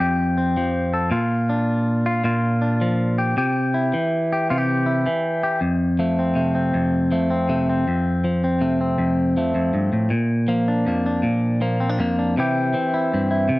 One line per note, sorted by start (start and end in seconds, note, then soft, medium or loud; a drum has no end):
0.00 1.12 F2 medium
0.00 0.56 F3 medium
0.00 0.36 C4 medium
0.00 0.93 G4 medium
0.38 1.12 C4 medium
0.57 1.10 F3 medium
0.94 1.10 A4 medium
1.11 2.23 A#2 medium
1.11 2.05 F4 medium
1.50 2.60 D4 medium
2.06 2.24 F4 medium
2.24 3.37 A#2 medium
2.24 3.18 F4 medium
2.62 3.35 D4 medium
2.81 3.35 F3 medium
3.18 3.35 G4 medium
3.37 3.93 C3 medium
3.37 4.31 G4 medium
3.74 4.85 E4 medium
3.94 5.05 E3 medium
4.33 4.50 G4 medium
4.50 5.06 C3 medium
4.50 4.58 F4 medium
4.58 5.42 G4 soft
4.86 5.59 E4 medium
5.06 5.60 E3 medium
5.43 5.60 G4 medium
5.61 6.74 F2 medium
5.99 7.11 F3 medium
5.99 6.36 A3 medium
6.19 6.54 C4 soft
6.35 7.11 C3 medium
6.35 7.11 A3 soft
6.55 7.29 C4 medium
6.74 7.87 F2 medium
7.11 8.24 F3 medium
7.11 7.48 A3 medium
7.30 7.68 C4 medium
7.49 7.84 C3 medium
7.49 7.85 A3 medium
7.69 8.43 C4 medium
7.88 8.97 F2 medium
8.24 9.36 F3 medium
8.44 8.80 C4 medium
8.61 9.36 C3 medium
8.61 9.36 A3 soft
8.81 10.12 C4 medium
8.98 9.54 F2 medium
9.37 10.10 F3 medium
9.37 10.10 A3 medium
9.55 9.73 F2 medium
9.74 9.92 G2 medium
9.93 10.12 A2 medium
10.10 10.86 A#2 medium
10.48 11.60 F3 medium
10.48 10.86 A#3 medium
10.68 11.05 D4 medium
10.87 11.24 F2 medium
10.87 11.60 A#3 medium
11.06 11.80 D4 medium
11.23 11.98 A#2 medium
11.61 12.34 F3 medium
11.61 11.99 A#3 medium
11.80 11.89 C4 medium
11.89 12.17 D4 medium
11.99 12.36 F2 medium
11.99 12.35 A#3 medium
12.19 12.35 D4 medium
12.37 12.74 C3 medium
12.37 12.73 E3 soft
12.37 12.93 E4 medium
12.37 13.59 G4 medium
12.37 muted clean electric guitar stroke medium
12.74 13.59 E3 medium
12.74 13.14 C4 soft
12.94 13.30 E4 medium
13.14 13.50 G2 medium
13.14 13.59 C4 soft
13.31 13.59 E4 medium
13.49 13.59 C3 medium